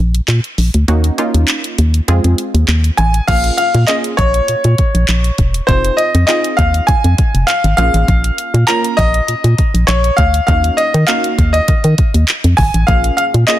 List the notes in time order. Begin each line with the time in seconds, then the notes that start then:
0.00 A#1
0.15 closed hi-hat
0.28 A#2, clap, closed hi-hat
0.44 closed hi-hat
0.58 A#1, open hi-hat
0.74 D2, closed hi-hat
0.88 D#2 A#3 C#4 D#4 F#4, closed hi-hat
1.04 closed hi-hat
1.18 A#3 C#4 D#4 F4, closed hi-hat
1.34 D#2, closed hi-hat
1.48 clap, closed hi-hat
1.64 closed hi-hat
1.78 D#2, closed hi-hat
1.94 closed hi-hat
2.08 F2 G#3 C4 F4 G#4, closed hi-hat
2.24 F2, closed hi-hat
2.38 closed hi-hat
2.54 D#2, closed hi-hat
2.68 D#2, clap, closed hi-hat
2.84 closed hi-hat
2.97 A1 G#5, closed hi-hat
3.14 closed hi-hat
3.27 A#1 A#3 C#4 F4 G#4 F5, kick, closed hi-hat, crash
3.44 closed hi-hat
3.57 F5, closed hi-hat
3.74 A#2, closed hi-hat
3.87 A#3 C#4 F4 G#4 D#5, clap, closed hi-hat
4.04 closed hi-hat
4.17 A#1 C#5, kick, closed hi-hat
4.34 closed hi-hat
4.48 A#2, closed hi-hat
4.64 A#2, closed hi-hat
4.78 kick, closed hi-hat
4.95 A#1, closed hi-hat
5.08 A#1, clap, closed hi-hat
5.24 closed hi-hat
5.38 E1, kick, closed hi-hat
5.54 closed hi-hat
5.67 F1 C4 D#4 F4 G#4 C5, kick, closed hi-hat
5.84 closed hi-hat
5.97 D#5, closed hi-hat
6.15 F2, closed hi-hat
6.27 C4 D#4 F4 G#4 D#5, clap, closed hi-hat
6.44 closed hi-hat
6.57 D#2 F5, kick, closed hi-hat
6.74 closed hi-hat
6.87 F2 G#5, kick, closed hi-hat
7.04 F2, closed hi-hat
7.18 kick, closed hi-hat
7.34 F1, closed hi-hat
7.47 F5, clap, closed hi-hat
7.64 G#1, closed hi-hat
7.77 A#1 A#3 C#4 F4 G#4 F5, closed hi-hat
7.94 A1, closed hi-hat
8.08 A#1, kick, closed hi-hat
8.24 closed hi-hat
8.38 closed hi-hat
8.54 A#2, closed hi-hat
8.67 A#3 C#4 F4 A#4 A#5, clap, closed hi-hat
8.84 closed hi-hat
8.97 A#1 D#5, kick, closed hi-hat
9.14 closed hi-hat
9.28 A#2, closed hi-hat
9.44 A#2, closed hi-hat
9.58 kick, closed hi-hat
9.74 A#1, closed hi-hat
9.87 A#1 C#5, clap, closed hi-hat
10.04 closed hi-hat
10.17 D2 F5, kick, closed hi-hat
10.34 closed hi-hat
10.47 D#2 A#3 C#4 D#4 F#4 F5, kick, closed hi-hat
10.64 closed hi-hat
10.77 D#5, closed hi-hat
10.94 D#3, closed hi-hat
11.07 A#3 C#4 D#4 F#4 F5, clap, closed hi-hat
11.24 closed hi-hat
11.38 D#2, kick, closed hi-hat
11.53 D#5, closed hi-hat
11.68 D#3, kick, closed hi-hat
11.84 D#3, closed hi-hat
11.98 kick, closed hi-hat
12.14 D#2, closed hi-hat
12.28 clap, closed hi-hat
12.44 F2, closed hi-hat
12.57 G#1 G#5, kick, open hi-hat
12.74 A1, closed hi-hat
12.87 A#1 A#3 C#4 F4 G#4 F5, kick, closed hi-hat
13.04 closed hi-hat
13.17 F5, closed hi-hat
13.34 A#2, closed hi-hat
13.47 A#3 C#4 F4 G#4 D#5, clap, closed hi-hat